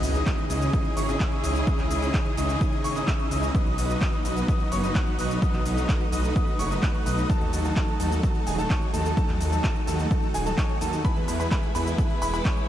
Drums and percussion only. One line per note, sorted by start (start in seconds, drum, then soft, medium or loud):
0.03 open hi-hat loud
0.03 shaker medium
0.15 closed hi-hat medium
0.15 shaker soft
0.26 kick loud
0.26 clap loud
0.26 closed hi-hat medium
0.26 shaker soft
0.38 closed hi-hat soft
0.50 open hi-hat loud
0.50 shaker medium
0.62 closed hi-hat medium
0.62 shaker soft
0.73 kick loud
0.73 closed hi-hat medium
0.73 shaker soft
0.85 closed hi-hat soft
0.97 open hi-hat loud
0.97 shaker medium
1.09 closed hi-hat medium
1.09 shaker soft
1.20 kick loud
1.20 clap loud
1.20 closed hi-hat medium
1.20 shaker soft
1.32 closed hi-hat soft
1.44 open hi-hat loud
1.44 shaker medium
1.55 closed hi-hat medium
1.55 shaker soft
1.67 kick loud
1.67 closed hi-hat medium
1.67 shaker soft
1.79 clap soft
1.79 closed hi-hat soft
1.91 open hi-hat loud
1.91 shaker medium
2.02 closed hi-hat medium
2.02 shaker soft
2.14 kick loud
2.14 clap loud
2.14 closed hi-hat medium
2.14 shaker soft
2.26 closed hi-hat soft
2.37 open hi-hat loud
2.37 shaker medium
2.49 closed hi-hat medium
2.49 shaker soft
2.61 kick loud
2.61 closed hi-hat medium
2.61 shaker soft
2.73 closed hi-hat soft
2.84 open hi-hat loud
2.84 shaker medium
2.96 closed hi-hat medium
2.96 shaker soft
3.08 kick loud
3.08 clap loud
3.08 closed hi-hat medium
3.08 shaker soft
3.19 closed hi-hat soft
3.31 open hi-hat loud
3.31 shaker medium
3.43 closed hi-hat medium
3.43 shaker soft
3.55 kick loud
3.55 closed hi-hat medium
3.55 shaker soft
3.66 closed hi-hat soft
3.78 open hi-hat loud
3.78 shaker medium
3.90 closed hi-hat medium
3.90 shaker soft
4.01 kick loud
4.01 clap loud
4.01 closed hi-hat medium
4.01 shaker soft
4.13 closed hi-hat soft
4.25 open hi-hat loud
4.25 shaker medium
4.37 closed hi-hat medium
4.37 shaker soft
4.48 kick loud
4.48 closed hi-hat medium
4.48 shaker soft
4.60 closed hi-hat soft
4.72 open hi-hat loud
4.72 shaker medium
4.84 closed hi-hat medium
4.84 shaker soft
4.95 kick loud
4.95 clap loud
4.95 closed hi-hat medium
4.95 shaker soft
5.07 closed hi-hat soft
5.19 open hi-hat loud
5.19 shaker medium
5.31 shaker soft
5.42 kick loud
5.42 closed hi-hat soft
5.42 shaker soft
5.54 clap soft
5.54 closed hi-hat soft
5.66 open hi-hat loud
5.66 shaker medium
5.77 closed hi-hat medium
5.77 shaker soft
5.89 kick loud
5.89 clap loud
5.89 closed hi-hat medium
5.89 shaker soft
6.01 closed hi-hat soft
6.12 open hi-hat loud
6.12 shaker medium
6.24 closed hi-hat medium
6.24 shaker soft
6.36 kick loud
6.36 closed hi-hat medium
6.36 shaker soft
6.48 closed hi-hat soft
6.59 open hi-hat loud
6.59 shaker medium
6.71 closed hi-hat medium
6.71 shaker soft
6.83 kick loud
6.83 clap loud
6.83 closed hi-hat medium
6.83 shaker soft
6.94 closed hi-hat soft
7.06 open hi-hat loud
7.06 shaker medium
7.18 closed hi-hat medium
7.18 shaker soft
7.30 kick loud
7.30 closed hi-hat soft
7.30 shaker soft
7.41 closed hi-hat soft
7.53 open hi-hat loud
7.53 shaker medium
7.65 closed hi-hat medium
7.65 shaker soft
7.76 kick loud
7.76 clap loud
7.76 closed hi-hat medium
7.76 shaker soft
7.88 closed hi-hat soft
8.00 open hi-hat loud
8.00 shaker medium
8.12 closed hi-hat medium
8.12 shaker soft
8.23 kick loud
8.23 closed hi-hat medium
8.23 shaker soft
8.35 closed hi-hat soft
8.47 open hi-hat loud
8.47 shaker medium
8.58 closed hi-hat medium
8.58 shaker soft
8.70 kick loud
8.70 clap loud
8.70 closed hi-hat medium
8.70 shaker soft
8.82 closed hi-hat soft
8.94 open hi-hat loud
8.94 shaker medium
9.05 closed hi-hat medium
9.05 shaker soft
9.17 kick loud
9.17 closed hi-hat medium
9.17 shaker soft
9.29 clap soft
9.29 closed hi-hat soft
9.41 open hi-hat loud
9.41 shaker medium
9.52 closed hi-hat medium
9.52 shaker soft
9.64 kick loud
9.64 clap loud
9.64 closed hi-hat medium
9.64 shaker soft
9.76 closed hi-hat soft
9.87 open hi-hat loud
9.87 shaker medium
9.99 closed hi-hat medium
9.99 shaker soft
10.11 kick loud
10.11 closed hi-hat medium
10.11 shaker soft
10.23 closed hi-hat soft
10.34 open hi-hat loud
10.34 shaker medium
10.46 closed hi-hat medium
10.46 shaker soft
10.58 kick loud
10.58 clap loud
10.58 closed hi-hat medium
10.58 shaker soft
10.69 closed hi-hat soft
10.81 open hi-hat loud
10.81 shaker medium
10.93 closed hi-hat medium
10.93 shaker soft
11.05 kick loud
11.05 closed hi-hat medium
11.05 shaker soft
11.16 closed hi-hat soft
11.28 open hi-hat loud
11.28 shaker medium
11.40 closed hi-hat medium
11.40 shaker soft
11.51 kick loud
11.51 clap loud
11.51 closed hi-hat medium
11.51 shaker soft
11.63 closed hi-hat soft
11.75 open hi-hat loud
11.75 shaker medium
11.87 closed hi-hat medium
11.87 shaker soft
11.98 kick loud
11.98 closed hi-hat medium
11.98 shaker soft
12.10 closed hi-hat soft
12.22 open hi-hat loud
12.22 shaker medium
12.33 closed hi-hat medium
12.33 shaker soft
12.45 kick loud
12.45 clap loud
12.45 closed hi-hat medium
12.45 shaker soft
12.57 closed hi-hat soft